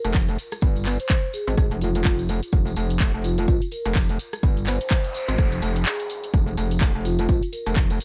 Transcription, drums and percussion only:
0.05 closed hi-hat, tambourine
0.14 kick, clap, tambourine
0.28 closed hi-hat, tambourine
0.38 open hi-hat, tambourine
0.52 cross-stick, closed hi-hat, tambourine
0.61 kick, tambourine
0.76 closed hi-hat, tambourine
0.86 clap, open hi-hat, tambourine
1.00 closed hi-hat, tambourine
1.09 kick, clap, tambourine
1.33 open hi-hat, tambourine
1.47 closed hi-hat, tambourine
1.58 kick, cross-stick, tambourine
1.71 closed hi-hat, tambourine
1.81 open hi-hat, tambourine
1.95 closed hi-hat, tambourine
2.05 kick, clap, tambourine
2.19 closed hi-hat, tambourine
2.29 open hi-hat, tambourine
2.42 closed hi-hat, tambourine
2.52 kick, tambourine
2.67 closed hi-hat, tambourine
2.76 open hi-hat, tambourine
2.90 closed hi-hat, tambourine
3.00 kick, clap, tambourine
3.24 open hi-hat, tambourine
3.38 closed hi-hat, tambourine
3.48 kick, tambourine
3.62 closed hi-hat, tambourine
3.71 open hi-hat, tambourine
3.85 closed hi-hat, tambourine
3.95 kick, clap, tambourine
4.09 closed hi-hat, tambourine
4.19 open hi-hat, tambourine
4.33 cross-stick, closed hi-hat, tambourine
4.43 kick, tambourine
4.57 closed hi-hat, tambourine
4.67 clap, open hi-hat, tambourine
4.81 closed hi-hat, tambourine
4.90 kick, clap, tambourine
5.04 closed hi-hat, tambourine
5.14 open hi-hat, tambourine
5.28 closed hi-hat, tambourine
5.38 kick, cross-stick, tambourine
5.52 closed hi-hat, tambourine
5.62 open hi-hat, tambourine
5.75 closed hi-hat, tambourine
5.86 clap, tambourine
6.00 closed hi-hat, tambourine
6.10 open hi-hat, tambourine
6.23 closed hi-hat, tambourine
6.34 kick, tambourine
6.47 closed hi-hat, tambourine
6.57 open hi-hat, tambourine
6.71 closed hi-hat, tambourine
6.81 kick, clap, tambourine
7.05 open hi-hat, tambourine
7.19 closed hi-hat, tambourine
7.29 kick, tambourine
7.43 closed hi-hat, tambourine
7.53 open hi-hat, tambourine
7.66 closed hi-hat, tambourine
7.76 kick, clap, tambourine
7.90 closed hi-hat, tambourine
8.00 open hi-hat, tambourine

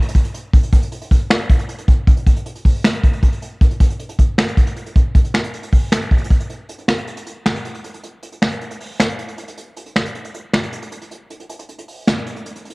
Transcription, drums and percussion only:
0.02 closed hi-hat
0.09 closed hi-hat
0.15 kick, closed hi-hat
0.25 closed hi-hat
0.34 closed hi-hat
0.53 kick, closed hi-hat
0.63 closed hi-hat
0.73 kick, closed hi-hat
0.82 closed hi-hat
0.92 closed hi-hat
1.01 closed hi-hat
1.11 kick, closed hi-hat
1.30 finger snap, snare
1.40 closed hi-hat
1.49 kick, closed hi-hat
1.59 closed hi-hat
1.69 closed hi-hat
1.79 closed hi-hat
1.88 kick, closed hi-hat
2.07 kick, closed hi-hat
2.17 closed hi-hat
2.26 kick, closed hi-hat
2.36 closed hi-hat
2.46 closed hi-hat
2.55 closed hi-hat
2.65 kick, open hi-hat
2.84 finger snap, snare, hi-hat pedal
2.94 closed hi-hat
3.03 kick, closed hi-hat
3.13 closed hi-hat
3.23 kick, closed hi-hat
3.32 closed hi-hat
3.42 closed hi-hat
3.61 kick, closed hi-hat
3.71 closed hi-hat
3.80 kick, closed hi-hat
3.90 closed hi-hat
4.00 closed hi-hat
4.09 closed hi-hat
4.19 kick, closed hi-hat
4.38 finger snap, snare
4.48 closed hi-hat
4.57 kick, closed hi-hat
4.67 closed hi-hat
4.76 closed hi-hat
4.86 closed hi-hat
4.96 kick, closed hi-hat
5.15 kick, closed hi-hat
5.25 closed hi-hat
5.34 finger snap, snare
5.44 closed hi-hat
5.53 closed hi-hat
5.63 closed hi-hat
5.73 kick, open hi-hat
5.92 finger snap, snare, hi-hat pedal
6.02 closed hi-hat
6.11 kick, closed hi-hat
6.18 closed hi-hat
6.24 closed hi-hat
6.30 kick, closed hi-hat
6.40 closed hi-hat
6.50 closed hi-hat
6.69 closed hi-hat
6.78 closed hi-hat
6.88 finger snap, snare
6.98 closed hi-hat
7.07 closed hi-hat
7.17 closed hi-hat
7.27 closed hi-hat
7.46 finger snap, snare
7.55 closed hi-hat
7.65 closed hi-hat
7.75 closed hi-hat
7.84 closed hi-hat
7.94 closed hi-hat
8.03 closed hi-hat
8.23 closed hi-hat
8.32 closed hi-hat
8.42 finger snap, snare
8.52 closed hi-hat
8.61 closed hi-hat
8.71 closed hi-hat
8.80 open hi-hat
9.00 finger snap, snare, hi-hat pedal
9.09 closed hi-hat
9.19 closed hi-hat
9.28 closed hi-hat
9.38 closed hi-hat
9.48 closed hi-hat
9.57 closed hi-hat
9.77 closed hi-hat
9.86 closed hi-hat
9.96 finger snap, snare
10.05 closed hi-hat
10.15 closed hi-hat
10.25 closed hi-hat
10.34 closed hi-hat
10.53 finger snap, snare
10.63 closed hi-hat
10.72 closed hi-hat
10.82 closed hi-hat
10.92 closed hi-hat
11.02 closed hi-hat
11.11 closed hi-hat
11.30 closed hi-hat
11.40 closed hi-hat
11.49 closed hi-hat
11.59 closed hi-hat
11.69 closed hi-hat
11.78 closed hi-hat
11.88 open hi-hat
12.07 finger snap, snare, hi-hat pedal
12.17 closed hi-hat
12.26 closed hi-hat
12.36 closed hi-hat
12.46 closed hi-hat
12.55 closed hi-hat
12.65 closed hi-hat
12.70 closed hi-hat

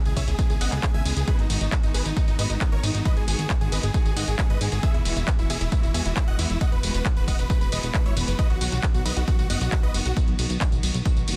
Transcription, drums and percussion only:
0.06 closed hi-hat, tambourine
0.16 kick, open hi-hat, ride, tambourine
0.28 closed hi-hat, tambourine
0.39 kick, closed hi-hat, ride, tambourine
0.50 closed hi-hat, tambourine
0.61 open hi-hat, ride, tambourine
0.72 clap, closed hi-hat, tambourine
0.83 kick, clap, closed hi-hat, tambourine
0.94 closed hi-hat
1.06 open hi-hat, ride, tambourine
1.17 closed hi-hat, tambourine
1.28 kick, closed hi-hat, ride, tambourine
1.39 closed hi-hat
1.50 open hi-hat, ride, tambourine
1.61 closed hi-hat, tambourine
1.72 kick, clap, closed hi-hat, ride, tambourine
1.83 closed hi-hat, tambourine
1.94 open hi-hat, ride, tambourine
2.06 closed hi-hat, tambourine
2.17 kick, closed hi-hat, ride, tambourine
2.28 closed hi-hat, tambourine
2.39 open hi-hat, ride, tambourine
2.50 closed hi-hat, tambourine
2.61 kick, clap, closed hi-hat, ride, tambourine
2.72 closed hi-hat
2.83 open hi-hat, ride, tambourine
2.95 closed hi-hat, tambourine
3.05 kick, closed hi-hat, ride, tambourine
3.17 closed hi-hat
3.28 open hi-hat, ride, tambourine
3.39 closed hi-hat, tambourine
3.50 kick, clap, closed hi-hat, tambourine
3.61 closed hi-hat, tambourine
3.72 open hi-hat, ride, tambourine
3.83 closed hi-hat, tambourine
3.94 kick, closed hi-hat, ride, tambourine
4.06 closed hi-hat, tambourine
4.17 open hi-hat, ride, tambourine
4.28 closed hi-hat, tambourine
4.39 kick, clap, closed hi-hat, tambourine
4.50 closed hi-hat
4.61 open hi-hat, ride, tambourine
4.72 closed hi-hat, tambourine
4.83 kick, closed hi-hat, ride, tambourine
4.94 closed hi-hat
5.05 open hi-hat, ride, tambourine
5.17 closed hi-hat, tambourine
5.28 kick, clap, closed hi-hat, ride, tambourine
5.39 closed hi-hat, tambourine
5.50 open hi-hat, ride, tambourine
5.61 closed hi-hat, tambourine
5.72 kick, closed hi-hat, ride, tambourine
5.83 closed hi-hat, tambourine
5.94 open hi-hat, ride, tambourine
6.05 closed hi-hat, tambourine
6.17 kick, clap, closed hi-hat, tambourine
6.28 closed hi-hat
6.39 open hi-hat, ride, tambourine
6.50 closed hi-hat, tambourine
6.61 kick, closed hi-hat, ride, tambourine
6.72 closed hi-hat
6.83 open hi-hat, ride, tambourine
6.94 closed hi-hat, tambourine
7.05 kick, clap, closed hi-hat, tambourine
7.17 closed hi-hat, tambourine
7.28 kick, open hi-hat, ride, tambourine
7.39 closed hi-hat, tambourine
7.50 kick, closed hi-hat, ride, tambourine
7.61 closed hi-hat, tambourine
7.72 open hi-hat, ride, tambourine
7.83 closed hi-hat, tambourine
7.94 kick, clap, closed hi-hat, ride, tambourine
8.06 closed hi-hat
8.17 open hi-hat, ride, tambourine
8.28 closed hi-hat, tambourine
8.39 kick, closed hi-hat, ride, tambourine
8.50 closed hi-hat
8.61 open hi-hat, ride, tambourine
8.72 closed hi-hat, tambourine
8.83 kick, clap, closed hi-hat, ride, tambourine
8.94 closed hi-hat, tambourine
9.06 open hi-hat, ride, tambourine
9.17 closed hi-hat, tambourine
9.28 kick, closed hi-hat, ride, tambourine
9.39 closed hi-hat, tambourine
9.50 open hi-hat, ride, tambourine
9.61 closed hi-hat, tambourine
9.72 kick, clap, closed hi-hat, tambourine
9.83 closed hi-hat
9.94 open hi-hat, ride, tambourine
10.06 closed hi-hat, tambourine
10.17 kick, closed hi-hat, ride, tambourine
10.28 closed hi-hat
10.39 open hi-hat, ride, tambourine
10.50 closed hi-hat, tambourine
10.61 kick, clap, closed hi-hat, tambourine
10.72 closed hi-hat, tambourine
10.83 open hi-hat, ride, tambourine
10.94 closed hi-hat, tambourine
11.05 kick, closed hi-hat, ride, tambourine
11.17 closed hi-hat, tambourine
11.28 open hi-hat, ride, tambourine

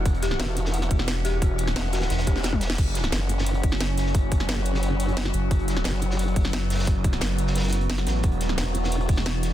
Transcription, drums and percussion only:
0.06 kick, closed hi-hat
0.14 closed hi-hat
0.22 snare, closed hi-hat
0.31 snare
0.39 snare, closed hi-hat
0.57 closed hi-hat
0.65 snare
0.74 closed hi-hat
0.82 snare
0.91 kick, closed hi-hat, open hi-hat
0.99 snare
1.08 snare, closed hi-hat
1.24 snare, closed hi-hat
1.42 kick, closed hi-hat
1.58 closed hi-hat
1.67 snare, closed hi-hat
1.76 snare, closed hi-hat
1.92 snare, closed hi-hat
2.02 snare, closed hi-hat
2.10 snare, closed hi-hat
2.19 snare, closed hi-hat
2.27 kick, snare, closed hi-hat
2.36 snare
2.43 snare, closed hi-hat
2.53 kick, high tom
2.61 snare, closed hi-hat
2.70 snare, closed hi-hat
2.78 kick, closed hi-hat, crash
2.87 closed hi-hat
2.95 snare, closed hi-hat
3.04 snare
3.12 snare, closed hi-hat
3.29 closed hi-hat
3.38 snare
3.46 closed hi-hat
3.54 closed hi-hat
3.63 kick, closed hi-hat, open hi-hat
3.72 snare
3.80 snare, closed hi-hat
3.98 snare, closed hi-hat
4.06 snare
4.14 kick, closed hi-hat
4.32 kick, closed hi-hat
4.40 snare, closed hi-hat
4.48 snare, closed hi-hat
4.65 closed hi-hat
4.74 snare
4.83 closed hi-hat
5.00 closed hi-hat
5.08 closed hi-hat
5.17 snare, closed hi-hat
5.25 snare, closed hi-hat
5.33 closed hi-hat
5.51 kick, closed hi-hat
5.59 closed hi-hat
5.68 snare, closed hi-hat
5.77 snare
5.84 snare, closed hi-hat
6.02 closed hi-hat
6.11 snare
6.19 closed hi-hat
6.28 closed hi-hat
6.36 kick, closed hi-hat, open hi-hat
6.45 snare
6.53 snare, closed hi-hat
6.70 snare, closed hi-hat
6.75 snare, closed hi-hat
6.79 snare, closed hi-hat
6.83 snare, closed hi-hat
6.87 kick, closed hi-hat
7.04 kick, closed hi-hat
7.13 snare, closed hi-hat
7.21 snare, closed hi-hat
7.38 closed hi-hat
7.47 snare
7.55 snare, closed hi-hat
7.59 snare, closed hi-hat
7.63 snare, closed hi-hat
7.68 snare, closed hi-hat
7.73 closed hi-hat
7.81 closed hi-hat
7.89 snare, closed hi-hat
7.98 snare, closed hi-hat
8.06 snare, closed hi-hat
8.23 kick, closed hi-hat
8.32 closed hi-hat
8.40 snare, closed hi-hat
8.49 snare
8.58 snare, closed hi-hat
8.74 closed hi-hat
8.84 snare
8.92 closed hi-hat
9.01 closed hi-hat
9.08 kick, closed hi-hat, open hi-hat
9.17 snare
9.26 snare, closed hi-hat
9.43 snare, closed hi-hat

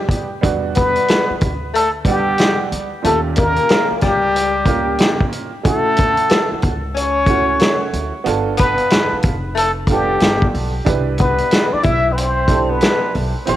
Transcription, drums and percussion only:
0.09 kick, closed hi-hat
0.43 kick, closed hi-hat
0.75 kick, closed hi-hat
0.96 closed hi-hat
1.08 snare, closed hi-hat
1.41 kick, closed hi-hat
1.75 closed hi-hat
2.05 kick, closed hi-hat
2.38 snare, closed hi-hat
2.72 closed hi-hat
3.04 closed hi-hat
3.36 kick, closed hi-hat
3.56 closed hi-hat
3.69 snare, closed hi-hat
4.01 kick, snare, closed hi-hat
4.36 closed hi-hat
4.66 kick, closed hi-hat
4.99 snare, closed hi-hat
5.20 kick
5.32 closed hi-hat
5.65 kick, closed hi-hat
5.97 kick, closed hi-hat
6.17 closed hi-hat
6.30 snare, closed hi-hat
6.62 kick, closed hi-hat
6.97 closed hi-hat
7.26 kick, closed hi-hat
7.59 snare, closed hi-hat
7.93 closed hi-hat
8.26 closed hi-hat
8.57 kick, closed hi-hat
8.78 closed hi-hat
8.90 snare, closed hi-hat
9.23 kick, closed hi-hat
9.57 closed hi-hat
9.87 kick, closed hi-hat
10.20 snare, closed hi-hat
10.42 kick
10.55 open hi-hat
10.87 kick, closed hi-hat
11.18 kick, closed hi-hat
11.38 closed hi-hat
11.51 snare, closed hi-hat
11.83 kick, closed hi-hat
12.18 closed hi-hat
12.48 kick, closed hi-hat
12.81 snare, closed hi-hat
13.15 open hi-hat
13.47 closed hi-hat

